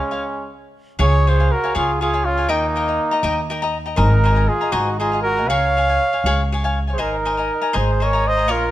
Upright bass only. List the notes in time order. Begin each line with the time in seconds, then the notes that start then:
0.99 C#2
1.76 C#2
2.49 D#2
3.23 D#2
3.98 G#1
4.73 G#1
5.47 C#2
6.24 C#2
6.99 G#1
7.75 G#1
8.48 A#1